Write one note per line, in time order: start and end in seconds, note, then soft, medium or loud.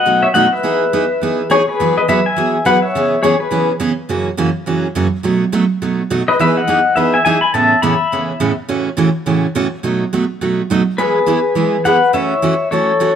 0.00 0.21 D#5 medium
0.00 0.21 F#5 loud
0.06 0.25 B2 medium
0.06 0.25 F#3 medium
0.06 0.26 A3 soft
0.06 0.26 D#4 medium
0.06 0.26 F#4 medium
0.23 0.28 C#5 medium
0.23 0.27 E5 medium
0.34 0.45 B2 medium
0.34 0.46 F#3 medium
0.34 0.46 A3 medium
0.34 0.46 D#4 medium
0.34 0.46 F#4 medium
0.34 0.51 D#5 medium
0.34 0.52 F#5 loud
0.53 1.47 B4 medium
0.53 1.46 E5 medium
0.63 0.83 E3 medium
0.63 0.83 B3 medium
0.63 0.84 D#4 medium
0.63 0.83 G#4 medium
0.93 1.04 E3 medium
0.93 1.04 B3 medium
0.93 1.04 D#4 medium
0.93 1.04 G#4 medium
1.21 1.41 E3 soft
1.21 1.41 B3 medium
1.21 1.41 D#4 medium
1.21 1.42 G#4 medium
1.50 1.61 E3 medium
1.50 1.61 B3 medium
1.50 1.61 D#4 medium
1.50 1.67 G#4 medium
1.50 1.62 G#4 medium
1.50 1.67 C#5 medium
1.68 1.95 G#4 medium
1.68 1.96 B4 medium
1.80 1.99 E3 medium
1.80 1.99 F#3 medium
1.80 1.99 B3 medium
1.80 1.99 F#4 medium
1.80 1.99 G#4 medium
1.97 2.08 B4 medium
1.97 2.08 D#5 medium
2.08 2.19 E3 medium
2.08 2.19 F#3 medium
2.08 2.19 B3 medium
2.08 2.19 F#4 medium
2.08 2.19 G#4 medium
2.08 2.25 B4 medium
2.08 2.25 E5 loud
2.26 2.63 E5 medium
2.26 2.67 G#5 loud
2.36 2.56 E3 medium
2.36 2.56 F#3 medium
2.36 2.56 B3 medium
2.36 2.56 F#4 medium
2.36 2.57 G#4 medium
2.65 2.76 E3 medium
2.65 2.76 F#3 medium
2.65 2.76 B3 medium
2.65 2.76 F#4 medium
2.65 2.77 G#4 medium
2.65 2.82 B4 medium
2.65 2.82 F#5 medium
2.82 3.21 C#5 medium
2.82 3.24 E5 medium
2.95 3.14 C#3 medium
2.95 3.14 E3 medium
2.95 3.15 B3 medium
2.95 3.15 C#4 medium
2.95 3.15 G#4 medium
3.23 3.34 C#3 medium
3.23 3.34 E3 medium
3.23 3.34 B3 medium
3.23 3.34 C#4 medium
3.23 3.39 G#4 medium
3.23 3.35 G#4 medium
3.23 3.40 C#5 medium
3.40 3.67 G#4 medium
3.40 3.69 B4 medium
3.51 3.71 C#3 medium
3.51 3.71 E3 medium
3.51 3.71 B3 medium
3.51 3.71 C#4 medium
3.51 3.71 G#4 medium
3.80 3.91 C#3 medium
3.80 3.91 E3 medium
3.80 3.91 B3 medium
3.80 3.91 C#4 medium
3.80 3.91 G#4 medium
4.09 4.28 F#2 medium
4.09 4.29 C#3 medium
4.09 4.29 E3 medium
4.09 4.29 A#3 medium
4.09 4.29 C#4 medium
4.09 4.29 F#4 medium
4.37 4.48 F#2 medium
4.37 4.49 C#3 medium
4.37 4.49 E3 medium
4.37 4.49 A#3 medium
4.37 4.49 C#4 medium
4.37 4.49 F#4 medium
4.66 4.86 F#2 medium
4.66 4.86 C#3 medium
4.66 4.86 E3 medium
4.66 4.86 A#3 medium
4.66 4.87 C#4 medium
4.66 4.86 F#4 medium
4.95 5.06 F#2 medium
4.95 5.06 C#3 medium
4.95 5.06 E3 medium
4.95 5.07 A#3 medium
4.95 5.07 C#4 medium
4.95 5.07 F#4 medium
5.23 5.43 B2 medium
5.23 5.43 F#3 medium
5.23 5.44 A3 medium
5.23 5.44 D#4 medium
5.23 5.44 F#4 medium
5.52 5.63 B2 medium
5.52 5.64 F#3 medium
5.52 5.64 A3 medium
5.52 5.64 D#4 medium
5.52 5.64 F#4 medium
5.82 6.01 B2 medium
5.82 6.01 F#3 medium
5.82 6.01 A3 medium
5.82 6.02 D#4 medium
5.82 6.02 F#4 medium
6.10 6.21 B2 medium
6.10 6.21 F#3 medium
6.10 6.22 A3 medium
6.10 6.22 D#4 medium
6.10 6.22 F#4 medium
6.28 6.39 B4 medium
6.28 6.40 D#5 medium
6.39 6.59 E3 medium
6.39 6.59 B3 medium
6.39 6.59 D#4 medium
6.39 6.59 G#4 medium
6.39 6.56 B4 medium
6.39 6.58 E5 medium
6.57 6.95 D#5 medium
6.57 6.97 F#5 medium
6.68 6.79 E3 medium
6.68 6.79 B3 medium
6.68 6.79 D#4 medium
6.68 6.79 G#4 medium
6.96 7.16 E3 soft
6.96 7.16 B3 medium
6.96 7.16 D#4 medium
6.96 7.17 G#4 medium
6.96 7.13 B4 medium
6.96 7.14 E5 medium
7.14 7.25 E5 medium
7.14 7.24 G#5 medium
7.25 7.36 E3 medium
7.25 7.36 B3 medium
7.25 7.37 D#4 medium
7.25 7.37 G#4 medium
7.25 7.42 E5 medium
7.25 7.41 G#5 loud
7.41 7.53 G#5 medium
7.41 7.54 B5 medium
7.54 7.73 A2 medium
7.54 7.73 C#3 medium
7.54 7.74 E3 medium
7.54 7.74 B3 medium
7.54 7.74 C#4 medium
7.54 7.81 E5 medium
7.54 7.83 A5 loud
7.82 7.94 A2 medium
7.82 7.94 C#3 medium
7.82 7.94 E3 medium
7.82 7.94 B3 medium
7.82 7.94 C#4 medium
7.82 8.54 E5 medium
7.82 8.53 B5 loud
8.12 8.31 A2 medium
8.12 8.32 C#3 medium
8.12 8.32 E3 medium
8.12 8.32 B3 medium
8.12 8.32 C#4 medium
8.40 8.51 A2 medium
8.40 8.51 C#3 medium
8.40 8.51 E3 medium
8.40 8.51 B3 medium
8.40 8.51 C#4 medium
8.68 8.88 A2 medium
8.68 8.88 C#3 medium
8.68 8.88 E3 medium
8.68 8.88 A3 medium
8.68 8.88 C#4 medium
8.68 8.89 F#4 medium
8.97 9.08 A2 medium
8.97 9.08 C#3 medium
8.97 9.09 E3 medium
8.97 9.09 A3 medium
8.97 9.09 C#4 medium
8.97 9.09 F#4 medium
9.26 9.46 A2 medium
9.26 9.46 C#3 medium
9.26 9.46 E3 medium
9.26 9.46 A3 medium
9.26 9.46 C#4 medium
9.26 9.46 F#4 medium
9.55 9.66 A2 medium
9.55 9.66 C#3 medium
9.55 9.66 E3 medium
9.55 9.66 A3 medium
9.55 9.67 C#4 medium
9.55 9.67 F#4 medium
9.83 10.03 B2 medium
9.83 10.03 F#3 medium
9.83 10.03 A3 medium
9.83 10.04 D#4 medium
9.83 10.04 F#4 medium
10.13 10.24 B2 medium
10.13 10.24 F#3 medium
10.13 10.24 A3 medium
10.13 10.24 D#4 medium
10.13 10.24 F#4 medium
10.41 10.61 B2 soft
10.41 10.61 F#3 medium
10.41 10.61 A3 medium
10.41 10.61 D#4 medium
10.41 10.61 F#4 medium
10.70 10.81 B2 medium
10.70 10.81 F#3 medium
10.70 10.81 A3 medium
10.70 10.81 D#4 medium
10.70 10.82 F#4 medium
10.98 11.18 E3 medium
10.98 11.18 G#3 medium
10.98 11.18 B3 medium
10.98 11.18 E4 medium
10.98 11.18 G#4 medium
10.98 11.81 G#4 medium
10.98 11.85 B4 medium
11.26 11.38 E3 medium
11.26 11.38 G#3 medium
11.26 11.38 B3 medium
11.26 11.38 E4 medium
11.26 11.39 G#4 medium
11.55 11.75 E3 medium
11.55 11.75 G#3 medium
11.55 11.76 B3 soft
11.55 11.76 E4 medium
11.55 11.76 G#4 medium
11.85 11.96 E3 medium
11.85 11.96 G#3 medium
11.85 11.96 B3 medium
11.85 11.96 E4 medium
11.85 11.96 G#4 medium
11.85 12.13 B4 medium
11.85 12.13 F#5 medium
12.13 12.33 E3 medium
12.13 12.33 A3 medium
12.13 12.33 C#4 medium
12.13 12.34 F#4 medium
12.13 12.68 C#5 medium
12.13 12.73 E5 medium
12.42 12.53 E3 medium
12.42 12.53 A3 medium
12.42 12.54 C#4 medium
12.42 12.54 F#4 medium
12.71 12.91 E3 medium
12.71 12.91 A3 medium
12.71 12.91 C#4 medium
12.71 12.92 F#4 medium
12.71 13.14 A4 medium
12.71 13.14 C#5 medium
13.00 13.11 E3 medium
13.00 13.11 A3 medium
13.00 13.11 C#4 medium
13.00 13.11 F#4 medium